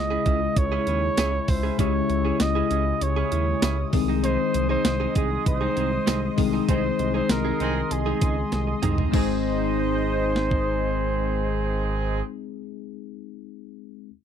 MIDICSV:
0, 0, Header, 1, 9, 480
1, 0, Start_track
1, 0, Key_signature, -4, "major"
1, 0, Tempo, 612245
1, 1403, Time_signature, 4, 2, 24, 8
1, 11166, End_track
2, 0, Start_track
2, 0, Title_t, "Analog synth pad"
2, 0, Program_c, 0, 89
2, 0, Note_on_c, 0, 56, 88
2, 0, Note_on_c, 0, 64, 76
2, 1406, Note_on_c, 0, 87, 94
2, 3050, Note_off_c, 0, 64, 0
2, 3083, Note_on_c, 0, 84, 80
2, 3085, Note_on_c, 0, 75, 74
2, 7130, Note_off_c, 0, 56, 0
2, 7131, Note_off_c, 0, 84, 0
2, 7132, Note_off_c, 0, 75, 0
2, 7133, Note_off_c, 0, 87, 0
2, 7162, Note_on_c, 0, 63, 77
2, 7163, Note_on_c, 0, 56, 84
2, 7164, Note_on_c, 0, 72, 74
2, 7165, Note_on_c, 0, 75, 100
2, 9580, Note_off_c, 0, 56, 0
2, 9580, Note_off_c, 0, 63, 0
2, 9581, Note_off_c, 0, 72, 0
2, 9582, Note_off_c, 0, 75, 0
2, 11166, End_track
3, 0, Start_track
3, 0, Title_t, "Flugelhorn"
3, 0, Program_c, 1, 56
3, 0, Note_on_c, 1, 75, 99
3, 453, Note_on_c, 1, 73, 112
3, 464, Note_off_c, 1, 75, 0
3, 1170, Note_on_c, 1, 72, 92
3, 1182, Note_off_c, 1, 73, 0
3, 1405, Note_off_c, 1, 72, 0
3, 1409, Note_on_c, 1, 73, 100
3, 1893, Note_on_c, 1, 75, 100
3, 1905, Note_off_c, 1, 73, 0
3, 2373, Note_on_c, 1, 73, 97
3, 2385, Note_off_c, 1, 75, 0
3, 3088, Note_off_c, 1, 73, 0
3, 3330, Note_on_c, 1, 72, 113
3, 3661, Note_off_c, 1, 72, 0
3, 3690, Note_on_c, 1, 72, 116
3, 4021, Note_off_c, 1, 72, 0
3, 4051, Note_on_c, 1, 68, 94
3, 4270, Note_off_c, 1, 68, 0
3, 4290, Note_on_c, 1, 72, 108
3, 4975, Note_off_c, 1, 72, 0
3, 5251, Note_on_c, 1, 72, 111
3, 5582, Note_off_c, 1, 72, 0
3, 5608, Note_on_c, 1, 72, 109
3, 5730, Note_on_c, 1, 70, 96
3, 5742, Note_off_c, 1, 72, 0
3, 6209, Note_on_c, 1, 68, 87
3, 6221, Note_off_c, 1, 70, 0
3, 6926, Note_off_c, 1, 68, 0
3, 7169, Note_on_c, 1, 72, 101
3, 9587, Note_off_c, 1, 72, 0
3, 11166, End_track
4, 0, Start_track
4, 0, Title_t, "Clean electric guitar"
4, 0, Program_c, 2, 27
4, 81, Note_on_c, 2, 68, 90
4, 87, Note_on_c, 2, 64, 77
4, 94, Note_on_c, 2, 61, 72
4, 192, Note_off_c, 2, 61, 0
4, 199, Note_off_c, 2, 64, 0
4, 201, Note_on_c, 2, 61, 67
4, 204, Note_off_c, 2, 68, 0
4, 208, Note_on_c, 2, 64, 73
4, 214, Note_on_c, 2, 68, 72
4, 309, Note_off_c, 2, 61, 0
4, 312, Note_off_c, 2, 64, 0
4, 315, Note_off_c, 2, 68, 0
4, 562, Note_on_c, 2, 68, 89
4, 568, Note_on_c, 2, 64, 85
4, 573, Note_on_c, 2, 61, 74
4, 673, Note_off_c, 2, 61, 0
4, 679, Note_off_c, 2, 64, 0
4, 682, Note_on_c, 2, 61, 63
4, 684, Note_off_c, 2, 68, 0
4, 688, Note_on_c, 2, 64, 64
4, 694, Note_on_c, 2, 68, 75
4, 789, Note_off_c, 2, 61, 0
4, 792, Note_off_c, 2, 64, 0
4, 793, Note_off_c, 2, 68, 0
4, 922, Note_on_c, 2, 61, 87
4, 928, Note_on_c, 2, 64, 96
4, 932, Note_on_c, 2, 68, 113
4, 1032, Note_off_c, 2, 68, 0
4, 1040, Note_off_c, 2, 64, 0
4, 1059, Note_off_c, 2, 61, 0
4, 1280, Note_on_c, 2, 68, 74
4, 1287, Note_on_c, 2, 64, 60
4, 1292, Note_on_c, 2, 61, 58
4, 1388, Note_off_c, 2, 68, 0
4, 1390, Note_off_c, 2, 61, 0
4, 1391, Note_off_c, 2, 64, 0
4, 1400, Note_on_c, 2, 61, 85
4, 1407, Note_on_c, 2, 64, 85
4, 1413, Note_on_c, 2, 68, 95
4, 1514, Note_off_c, 2, 68, 0
4, 1522, Note_off_c, 2, 64, 0
4, 1538, Note_off_c, 2, 61, 0
4, 1761, Note_on_c, 2, 68, 67
4, 1768, Note_on_c, 2, 64, 61
4, 1773, Note_on_c, 2, 61, 57
4, 1869, Note_off_c, 2, 68, 0
4, 1871, Note_off_c, 2, 61, 0
4, 1872, Note_off_c, 2, 64, 0
4, 2001, Note_on_c, 2, 68, 87
4, 2008, Note_on_c, 2, 64, 75
4, 2012, Note_on_c, 2, 61, 74
4, 2112, Note_off_c, 2, 61, 0
4, 2119, Note_off_c, 2, 64, 0
4, 2121, Note_on_c, 2, 61, 61
4, 2123, Note_off_c, 2, 68, 0
4, 2128, Note_on_c, 2, 64, 67
4, 2133, Note_on_c, 2, 68, 65
4, 2229, Note_off_c, 2, 61, 0
4, 2231, Note_off_c, 2, 68, 0
4, 2232, Note_off_c, 2, 64, 0
4, 2480, Note_on_c, 2, 68, 95
4, 2487, Note_on_c, 2, 64, 82
4, 2493, Note_on_c, 2, 61, 72
4, 2591, Note_off_c, 2, 61, 0
4, 2598, Note_off_c, 2, 64, 0
4, 2600, Note_on_c, 2, 61, 66
4, 2603, Note_off_c, 2, 68, 0
4, 2607, Note_on_c, 2, 64, 65
4, 2612, Note_on_c, 2, 68, 66
4, 2708, Note_off_c, 2, 61, 0
4, 2712, Note_off_c, 2, 64, 0
4, 2712, Note_off_c, 2, 68, 0
4, 2840, Note_on_c, 2, 61, 95
4, 2847, Note_on_c, 2, 64, 100
4, 2852, Note_on_c, 2, 68, 108
4, 2952, Note_off_c, 2, 68, 0
4, 2961, Note_off_c, 2, 64, 0
4, 2978, Note_off_c, 2, 61, 0
4, 3201, Note_on_c, 2, 68, 62
4, 3208, Note_on_c, 2, 63, 59
4, 3213, Note_on_c, 2, 60, 52
4, 3309, Note_off_c, 2, 68, 0
4, 3311, Note_off_c, 2, 60, 0
4, 3312, Note_off_c, 2, 63, 0
4, 3320, Note_on_c, 2, 60, 81
4, 3327, Note_on_c, 2, 63, 77
4, 3332, Note_on_c, 2, 68, 90
4, 3433, Note_off_c, 2, 68, 0
4, 3441, Note_off_c, 2, 63, 0
4, 3458, Note_off_c, 2, 60, 0
4, 3679, Note_on_c, 2, 68, 72
4, 3685, Note_on_c, 2, 63, 64
4, 3691, Note_on_c, 2, 60, 56
4, 3788, Note_off_c, 2, 68, 0
4, 3791, Note_off_c, 2, 60, 0
4, 3791, Note_off_c, 2, 63, 0
4, 3919, Note_on_c, 2, 68, 85
4, 3926, Note_on_c, 2, 63, 81
4, 3931, Note_on_c, 2, 60, 74
4, 4029, Note_off_c, 2, 60, 0
4, 4035, Note_off_c, 2, 63, 0
4, 4039, Note_on_c, 2, 60, 64
4, 4041, Note_off_c, 2, 68, 0
4, 4045, Note_on_c, 2, 63, 67
4, 4051, Note_on_c, 2, 68, 73
4, 4147, Note_off_c, 2, 60, 0
4, 4149, Note_off_c, 2, 68, 0
4, 4150, Note_off_c, 2, 63, 0
4, 4396, Note_on_c, 2, 68, 79
4, 4403, Note_on_c, 2, 63, 72
4, 4409, Note_on_c, 2, 60, 68
4, 4506, Note_off_c, 2, 60, 0
4, 4513, Note_off_c, 2, 63, 0
4, 4515, Note_on_c, 2, 60, 68
4, 4518, Note_off_c, 2, 68, 0
4, 4523, Note_on_c, 2, 63, 68
4, 4527, Note_on_c, 2, 68, 70
4, 4626, Note_off_c, 2, 60, 0
4, 4629, Note_off_c, 2, 63, 0
4, 4629, Note_off_c, 2, 68, 0
4, 4756, Note_on_c, 2, 60, 98
4, 4764, Note_on_c, 2, 63, 92
4, 4769, Note_on_c, 2, 68, 104
4, 4870, Note_off_c, 2, 68, 0
4, 4877, Note_off_c, 2, 63, 0
4, 4896, Note_off_c, 2, 60, 0
4, 5118, Note_on_c, 2, 68, 62
4, 5124, Note_on_c, 2, 63, 55
4, 5131, Note_on_c, 2, 60, 57
4, 5227, Note_off_c, 2, 68, 0
4, 5229, Note_off_c, 2, 60, 0
4, 5230, Note_off_c, 2, 63, 0
4, 5239, Note_on_c, 2, 60, 82
4, 5245, Note_on_c, 2, 63, 84
4, 5250, Note_on_c, 2, 68, 100
4, 5350, Note_off_c, 2, 68, 0
4, 5358, Note_off_c, 2, 63, 0
4, 5377, Note_off_c, 2, 60, 0
4, 5599, Note_on_c, 2, 68, 69
4, 5606, Note_on_c, 2, 63, 66
4, 5611, Note_on_c, 2, 60, 61
4, 5707, Note_off_c, 2, 68, 0
4, 5710, Note_off_c, 2, 60, 0
4, 5711, Note_off_c, 2, 63, 0
4, 5838, Note_on_c, 2, 68, 81
4, 5845, Note_on_c, 2, 63, 74
4, 5850, Note_on_c, 2, 60, 63
4, 5949, Note_off_c, 2, 60, 0
4, 5955, Note_off_c, 2, 63, 0
4, 5958, Note_on_c, 2, 60, 65
4, 5961, Note_off_c, 2, 68, 0
4, 5965, Note_on_c, 2, 63, 64
4, 5970, Note_on_c, 2, 68, 64
4, 6067, Note_off_c, 2, 60, 0
4, 6070, Note_off_c, 2, 63, 0
4, 6073, Note_off_c, 2, 68, 0
4, 6318, Note_on_c, 2, 68, 80
4, 6326, Note_on_c, 2, 63, 71
4, 6330, Note_on_c, 2, 60, 66
4, 6430, Note_off_c, 2, 60, 0
4, 6437, Note_off_c, 2, 63, 0
4, 6440, Note_on_c, 2, 60, 68
4, 6442, Note_off_c, 2, 68, 0
4, 6446, Note_on_c, 2, 63, 72
4, 6451, Note_on_c, 2, 68, 76
4, 6548, Note_off_c, 2, 60, 0
4, 6551, Note_off_c, 2, 63, 0
4, 6551, Note_off_c, 2, 68, 0
4, 6918, Note_on_c, 2, 60, 78
4, 6926, Note_on_c, 2, 63, 87
4, 6931, Note_on_c, 2, 68, 86
4, 7028, Note_off_c, 2, 68, 0
4, 7035, Note_off_c, 2, 63, 0
4, 7038, Note_on_c, 2, 68, 68
4, 7040, Note_off_c, 2, 60, 0
4, 7045, Note_on_c, 2, 63, 57
4, 7147, Note_off_c, 2, 68, 0
4, 7149, Note_on_c, 2, 60, 84
4, 7150, Note_off_c, 2, 63, 0
4, 7172, Note_on_c, 2, 63, 81
4, 7189, Note_on_c, 2, 68, 89
4, 9893, Note_off_c, 2, 60, 0
4, 9916, Note_off_c, 2, 63, 0
4, 9933, Note_off_c, 2, 68, 0
4, 11166, End_track
5, 0, Start_track
5, 0, Title_t, "Tine electric piano"
5, 0, Program_c, 3, 4
5, 0, Control_c, 3, 64, 127
5, 0, Note_on_c, 3, 49, 65
5, 0, Note_on_c, 3, 56, 59
5, 0, Note_on_c, 3, 61, 61
5, 0, Note_on_c, 3, 64, 59
5, 0, Note_on_c, 3, 68, 74
5, 1367, Note_off_c, 3, 49, 0
5, 1369, Note_off_c, 3, 56, 0
5, 1371, Note_off_c, 3, 61, 0
5, 1374, Note_off_c, 3, 64, 0
5, 1376, Note_off_c, 3, 68, 0
5, 1392, Note_on_c, 3, 49, 66
5, 1398, Note_on_c, 3, 56, 62
5, 1402, Note_on_c, 3, 61, 62
5, 1407, Note_on_c, 3, 64, 62
5, 1411, Note_on_c, 3, 67, 74
5, 3046, Note_off_c, 3, 49, 0
5, 3049, Note_off_c, 3, 56, 0
5, 3051, Note_off_c, 3, 61, 0
5, 3053, Note_off_c, 3, 64, 0
5, 3056, Note_off_c, 3, 67, 0
5, 3074, Note_on_c, 3, 51, 81
5, 3079, Note_on_c, 3, 56, 72
5, 3082, Note_on_c, 3, 60, 77
5, 3088, Note_on_c, 3, 63, 71
5, 3092, Note_on_c, 3, 68, 93
5, 3093, Control_c, 3, 64, 0
5, 3222, Control_c, 3, 64, 127
5, 4967, Note_off_c, 3, 51, 0
5, 4969, Note_off_c, 3, 56, 0
5, 4971, Note_off_c, 3, 60, 0
5, 4974, Note_off_c, 3, 63, 0
5, 4976, Note_off_c, 3, 68, 0
5, 4991, Note_on_c, 3, 51, 84
5, 4995, Note_on_c, 3, 56, 73
5, 4999, Note_on_c, 3, 60, 72
5, 5005, Note_on_c, 3, 63, 73
5, 5010, Note_on_c, 3, 68, 86
5, 6885, Note_off_c, 3, 51, 0
5, 6887, Note_off_c, 3, 56, 0
5, 6889, Note_off_c, 3, 60, 0
5, 6892, Note_off_c, 3, 63, 0
5, 6895, Note_off_c, 3, 68, 0
5, 7143, Note_on_c, 3, 56, 80
5, 7155, Note_on_c, 3, 60, 74
5, 7168, Note_on_c, 3, 63, 74
5, 7174, Control_c, 3, 64, 0
5, 7181, Note_on_c, 3, 68, 90
5, 7288, Control_c, 3, 64, 127
5, 9560, Note_off_c, 3, 56, 0
5, 9573, Note_off_c, 3, 60, 0
5, 9585, Note_off_c, 3, 63, 0
5, 9598, Note_off_c, 3, 68, 0
5, 11053, Control_c, 3, 64, 0
5, 11166, End_track
6, 0, Start_track
6, 0, Title_t, "Horn section"
6, 0, Program_c, 4, 61
6, 5241, Note_on_c, 4, 60, 84
6, 5241, Note_on_c, 4, 63, 87
6, 5242, Note_on_c, 4, 56, 86
6, 5242, Note_on_c, 4, 68, 93
6, 5343, Note_off_c, 4, 63, 0
6, 5344, Note_off_c, 4, 56, 0
6, 5344, Note_off_c, 4, 60, 0
6, 5344, Note_off_c, 4, 68, 0
6, 5961, Note_on_c, 4, 60, 91
6, 5962, Note_on_c, 4, 56, 99
6, 5962, Note_on_c, 4, 63, 94
6, 5962, Note_on_c, 4, 68, 108
6, 6115, Note_off_c, 4, 56, 0
6, 6115, Note_off_c, 4, 60, 0
6, 6115, Note_off_c, 4, 63, 0
6, 6115, Note_off_c, 4, 68, 0
6, 7161, Note_on_c, 4, 51, 84
6, 7161, Note_on_c, 4, 56, 94
6, 7161, Note_on_c, 4, 60, 87
6, 7161, Note_on_c, 4, 68, 102
6, 9578, Note_off_c, 4, 51, 0
6, 9578, Note_off_c, 4, 60, 0
6, 9579, Note_off_c, 4, 56, 0
6, 9579, Note_off_c, 4, 68, 0
6, 11166, End_track
7, 0, Start_track
7, 0, Title_t, "Analog synth bass"
7, 0, Program_c, 5, 38
7, 0, Note_on_c, 5, 37, 100
7, 137, Note_off_c, 5, 37, 0
7, 205, Note_on_c, 5, 37, 103
7, 377, Note_off_c, 5, 37, 0
7, 443, Note_on_c, 5, 37, 106
7, 616, Note_off_c, 5, 37, 0
7, 683, Note_on_c, 5, 39, 88
7, 856, Note_off_c, 5, 39, 0
7, 922, Note_on_c, 5, 37, 112
7, 1095, Note_off_c, 5, 37, 0
7, 1164, Note_on_c, 5, 37, 101
7, 1336, Note_off_c, 5, 37, 0
7, 1403, Note_on_c, 5, 37, 106
7, 1575, Note_off_c, 5, 37, 0
7, 1644, Note_on_c, 5, 37, 108
7, 1816, Note_off_c, 5, 37, 0
7, 1885, Note_on_c, 5, 37, 109
7, 2057, Note_off_c, 5, 37, 0
7, 2124, Note_on_c, 5, 37, 115
7, 2296, Note_off_c, 5, 37, 0
7, 2364, Note_on_c, 5, 37, 109
7, 2536, Note_off_c, 5, 37, 0
7, 2604, Note_on_c, 5, 39, 94
7, 2776, Note_off_c, 5, 39, 0
7, 2843, Note_on_c, 5, 37, 105
7, 3015, Note_off_c, 5, 37, 0
7, 3084, Note_on_c, 5, 36, 109
7, 3429, Note_off_c, 5, 36, 0
7, 3564, Note_on_c, 5, 36, 109
7, 3736, Note_off_c, 5, 36, 0
7, 3803, Note_on_c, 5, 36, 114
7, 3975, Note_off_c, 5, 36, 0
7, 4044, Note_on_c, 5, 36, 102
7, 4216, Note_off_c, 5, 36, 0
7, 4284, Note_on_c, 5, 36, 118
7, 4456, Note_off_c, 5, 36, 0
7, 4522, Note_on_c, 5, 36, 94
7, 4695, Note_off_c, 5, 36, 0
7, 4761, Note_on_c, 5, 36, 110
7, 4934, Note_off_c, 5, 36, 0
7, 5003, Note_on_c, 5, 36, 101
7, 5175, Note_off_c, 5, 36, 0
7, 5243, Note_on_c, 5, 36, 106
7, 5416, Note_off_c, 5, 36, 0
7, 5483, Note_on_c, 5, 36, 100
7, 5656, Note_off_c, 5, 36, 0
7, 5723, Note_on_c, 5, 36, 108
7, 5896, Note_off_c, 5, 36, 0
7, 5962, Note_on_c, 5, 36, 101
7, 6135, Note_off_c, 5, 36, 0
7, 6204, Note_on_c, 5, 36, 109
7, 6377, Note_off_c, 5, 36, 0
7, 6443, Note_on_c, 5, 37, 97
7, 6615, Note_off_c, 5, 37, 0
7, 6684, Note_on_c, 5, 36, 111
7, 6856, Note_off_c, 5, 36, 0
7, 6924, Note_on_c, 5, 36, 96
7, 7096, Note_off_c, 5, 36, 0
7, 7163, Note_on_c, 5, 32, 101
7, 9580, Note_off_c, 5, 32, 0
7, 11166, End_track
8, 0, Start_track
8, 0, Title_t, "Muted clean electric guitar strokes"
8, 323, Note_on_c, 9, 29, 45
8, 402, Note_off_c, 9, 29, 0
8, 442, Note_on_c, 9, 29, 47
8, 521, Note_off_c, 9, 29, 0
8, 1041, Note_on_c, 9, 29, 52
8, 1120, Note_off_c, 9, 29, 0
8, 1161, Note_on_c, 9, 29, 41
8, 1239, Note_off_c, 9, 29, 0
8, 1523, Note_on_c, 9, 29, 44
8, 1601, Note_off_c, 9, 29, 0
8, 1643, Note_on_c, 9, 29, 41
8, 1721, Note_off_c, 9, 29, 0
8, 2362, Note_on_c, 9, 29, 42
8, 2440, Note_off_c, 9, 29, 0
8, 2722, Note_on_c, 9, 29, 48
8, 2800, Note_off_c, 9, 29, 0
8, 2962, Note_on_c, 9, 29, 45
8, 3040, Note_off_c, 9, 29, 0
8, 3083, Note_on_c, 9, 29, 39
8, 3162, Note_off_c, 9, 29, 0
8, 3562, Note_on_c, 9, 29, 40
8, 3640, Note_off_c, 9, 29, 0
8, 4159, Note_on_c, 9, 29, 47
8, 4237, Note_off_c, 9, 29, 0
8, 4278, Note_on_c, 9, 29, 43
8, 4356, Note_off_c, 9, 29, 0
8, 4638, Note_on_c, 9, 29, 55
8, 4717, Note_off_c, 9, 29, 0
8, 4879, Note_on_c, 9, 29, 40
8, 4957, Note_off_c, 9, 29, 0
8, 5000, Note_on_c, 9, 29, 42
8, 5078, Note_off_c, 9, 29, 0
8, 5359, Note_on_c, 9, 29, 49
8, 5438, Note_off_c, 9, 29, 0
8, 5479, Note_on_c, 9, 29, 47
8, 5557, Note_off_c, 9, 29, 0
8, 6081, Note_on_c, 9, 29, 40
8, 6159, Note_off_c, 9, 29, 0
8, 6200, Note_on_c, 9, 29, 46
8, 6279, Note_off_c, 9, 29, 0
8, 6560, Note_on_c, 9, 29, 59
8, 6639, Note_off_c, 9, 29, 0
8, 6681, Note_on_c, 9, 29, 44
8, 6759, Note_off_c, 9, 29, 0
8, 6800, Note_on_c, 9, 29, 48
8, 6879, Note_off_c, 9, 29, 0
8, 11166, End_track
9, 0, Start_track
9, 0, Title_t, "Drums"
9, 202, Note_on_c, 9, 42, 75
9, 204, Note_on_c, 9, 36, 95
9, 280, Note_off_c, 9, 42, 0
9, 282, Note_off_c, 9, 36, 0
9, 443, Note_on_c, 9, 42, 101
9, 444, Note_on_c, 9, 36, 109
9, 521, Note_off_c, 9, 42, 0
9, 522, Note_off_c, 9, 36, 0
9, 681, Note_on_c, 9, 42, 83
9, 759, Note_off_c, 9, 42, 0
9, 920, Note_on_c, 9, 42, 72
9, 922, Note_on_c, 9, 38, 127
9, 922, Note_on_c, 9, 54, 79
9, 999, Note_off_c, 9, 42, 0
9, 1000, Note_off_c, 9, 54, 0
9, 1001, Note_off_c, 9, 38, 0
9, 1161, Note_on_c, 9, 46, 80
9, 1163, Note_on_c, 9, 36, 114
9, 1239, Note_off_c, 9, 46, 0
9, 1242, Note_off_c, 9, 36, 0
9, 1403, Note_on_c, 9, 36, 106
9, 1403, Note_on_c, 9, 42, 98
9, 1481, Note_off_c, 9, 36, 0
9, 1481, Note_off_c, 9, 42, 0
9, 1643, Note_on_c, 9, 42, 67
9, 1722, Note_off_c, 9, 42, 0
9, 1881, Note_on_c, 9, 38, 106
9, 1882, Note_on_c, 9, 42, 97
9, 1883, Note_on_c, 9, 54, 61
9, 1959, Note_off_c, 9, 38, 0
9, 1960, Note_off_c, 9, 42, 0
9, 1962, Note_off_c, 9, 54, 0
9, 2122, Note_on_c, 9, 42, 77
9, 2200, Note_off_c, 9, 42, 0
9, 2363, Note_on_c, 9, 42, 94
9, 2442, Note_off_c, 9, 42, 0
9, 2601, Note_on_c, 9, 42, 80
9, 2680, Note_off_c, 9, 42, 0
9, 2840, Note_on_c, 9, 42, 70
9, 2841, Note_on_c, 9, 54, 77
9, 2842, Note_on_c, 9, 38, 125
9, 2918, Note_off_c, 9, 42, 0
9, 2920, Note_off_c, 9, 38, 0
9, 2920, Note_off_c, 9, 54, 0
9, 3080, Note_on_c, 9, 46, 78
9, 3083, Note_on_c, 9, 36, 114
9, 3158, Note_off_c, 9, 46, 0
9, 3161, Note_off_c, 9, 36, 0
9, 3322, Note_on_c, 9, 42, 100
9, 3400, Note_off_c, 9, 42, 0
9, 3562, Note_on_c, 9, 42, 70
9, 3641, Note_off_c, 9, 42, 0
9, 3801, Note_on_c, 9, 38, 109
9, 3802, Note_on_c, 9, 42, 95
9, 3803, Note_on_c, 9, 54, 60
9, 3879, Note_off_c, 9, 38, 0
9, 3880, Note_off_c, 9, 42, 0
9, 3882, Note_off_c, 9, 54, 0
9, 4041, Note_on_c, 9, 42, 76
9, 4044, Note_on_c, 9, 36, 101
9, 4119, Note_off_c, 9, 42, 0
9, 4122, Note_off_c, 9, 36, 0
9, 4283, Note_on_c, 9, 42, 98
9, 4284, Note_on_c, 9, 36, 109
9, 4362, Note_off_c, 9, 36, 0
9, 4362, Note_off_c, 9, 42, 0
9, 4522, Note_on_c, 9, 42, 83
9, 4600, Note_off_c, 9, 42, 0
9, 4761, Note_on_c, 9, 42, 72
9, 4762, Note_on_c, 9, 38, 122
9, 4762, Note_on_c, 9, 54, 76
9, 4839, Note_off_c, 9, 42, 0
9, 4840, Note_off_c, 9, 54, 0
9, 4841, Note_off_c, 9, 38, 0
9, 5000, Note_on_c, 9, 46, 77
9, 5003, Note_on_c, 9, 36, 112
9, 5078, Note_off_c, 9, 46, 0
9, 5081, Note_off_c, 9, 36, 0
9, 5242, Note_on_c, 9, 36, 114
9, 5242, Note_on_c, 9, 42, 97
9, 5320, Note_off_c, 9, 42, 0
9, 5321, Note_off_c, 9, 36, 0
9, 5483, Note_on_c, 9, 42, 69
9, 5561, Note_off_c, 9, 42, 0
9, 5719, Note_on_c, 9, 38, 103
9, 5720, Note_on_c, 9, 42, 94
9, 5722, Note_on_c, 9, 54, 62
9, 5797, Note_off_c, 9, 38, 0
9, 5798, Note_off_c, 9, 42, 0
9, 5800, Note_off_c, 9, 54, 0
9, 5960, Note_on_c, 9, 42, 75
9, 6039, Note_off_c, 9, 42, 0
9, 6202, Note_on_c, 9, 42, 97
9, 6280, Note_off_c, 9, 42, 0
9, 6440, Note_on_c, 9, 42, 79
9, 6442, Note_on_c, 9, 36, 109
9, 6518, Note_off_c, 9, 42, 0
9, 6521, Note_off_c, 9, 36, 0
9, 6680, Note_on_c, 9, 42, 68
9, 6682, Note_on_c, 9, 38, 64
9, 6759, Note_off_c, 9, 42, 0
9, 6760, Note_off_c, 9, 38, 0
9, 6920, Note_on_c, 9, 42, 77
9, 6922, Note_on_c, 9, 45, 95
9, 6998, Note_off_c, 9, 42, 0
9, 7000, Note_off_c, 9, 45, 0
9, 7042, Note_on_c, 9, 43, 103
9, 7120, Note_off_c, 9, 43, 0
9, 7162, Note_on_c, 9, 36, 113
9, 7162, Note_on_c, 9, 49, 93
9, 7240, Note_off_c, 9, 49, 0
9, 7241, Note_off_c, 9, 36, 0
9, 8122, Note_on_c, 9, 38, 63
9, 8200, Note_off_c, 9, 38, 0
9, 8242, Note_on_c, 9, 36, 73
9, 8320, Note_off_c, 9, 36, 0
9, 11166, End_track
0, 0, End_of_file